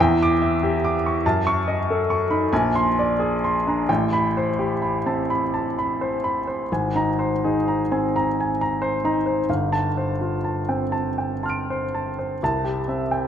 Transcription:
0.00 E2 G5
0.22 D6
0.42 E5
0.63 G4
0.84 D6
1.06 C#6
1.26 F#2 A5
1.47 C#6
1.68 D#5
1.90 A4
2.10 C#6
2.31 D#4 B5
2.53 A#1 G#5
2.75 C6
2.99 D5
3.19 G#4
3.44 C6
3.67 D4 A#5
3.89 A1 G5
4.13 B5
4.37 C5
4.59 G4
4.82 B5
5.06 C4 A5
5.30 B5
5.54 A5
5.79 B5
6.01 C5
6.24 B5
6.47 C5
6.72 G#1 G#5
6.95 D#4 A#5
7.19 C5
7.44 D#4 G#4
7.68 A#5
7.92 C4 G#5
8.16 A#5
8.40 G#5
8.61 A#5
8.82 C5
9.04 D#4 A#5
9.26 C5
9.50 G1 F5
9.73 A5
9.97 C5
10.21 F4
10.44 A5
10.69 C4 G5
10.92 A5
11.18 G5
11.43 A5 C6 F6
11.50 D7
11.70 C5
11.95 A5
12.19 C5
12.43 C2 A5
12.64 G4
12.88 C4 E5
13.11 G5

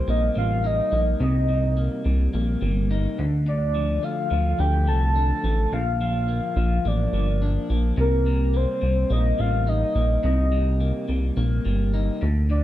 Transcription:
Already playing: C3 G3
0.07 A#1 A#3 D#5
0.35 A1 G3 F5
0.64 D#4 D#5
0.92 A#1 A#3
1.20 C2 C3 D#5
1.49 G3
1.77 A#3
2.05 C2 G3
2.33 A#1 A#3
2.61 G1 G3
2.91 D#4
3.19 D2 D3
3.47 D3 D5
3.75 F3
4.03 A3 F5
4.31 D2 F3
4.59 D2 A3 G5
4.87 C2 F3 A5
5.16 D4
5.44 A1 A3
5.72 A#1 A#2 F5
6.01 F3 F5
6.28 A#3
6.56 A#1 F3
6.85 A1 A#3 D5
7.13 G1 F3
7.42 D4
7.70 A#1 A#3
7.97 C2 C3 A#4
8.26 G3
8.54 A#3 C5
8.81 C2 G3
9.10 A#1 A#3 D#5
9.39 A1 G3 F5
9.67 D#4 D#5
9.95 A#1 A#3
10.23 C2 C3 D#5
10.52 G3
10.80 A#3
11.08 C2 G3
11.37 A#1 A#3
11.65 G1 G3
11.94 D#4
12.22 D2 D3
12.50 D3 D5

